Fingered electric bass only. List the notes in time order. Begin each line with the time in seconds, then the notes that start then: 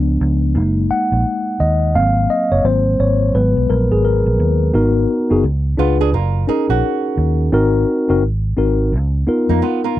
Already playing: C#2
0.21 C#2
0.55 F#1
0.90 muted fingered electric bass stroke
1.12 A#1
1.60 D#2
1.95 G#1
2.51 F#1
2.64 G#1
2.99 G#1
3.35 G#1
3.56 B1
3.70 A#1
3.91 G#1
4.26 A#1
4.39 D#2
4.74 G#1
5.31 F#1
5.44 C#2
5.78 C#2
6.13 F#1
6.69 A#1
7.17 D#2
7.53 G#1
8.10 F#1
8.23 G#1
8.57 G#1
8.93 C#2
9.28 muted fingered electric bass stroke
9.49 F2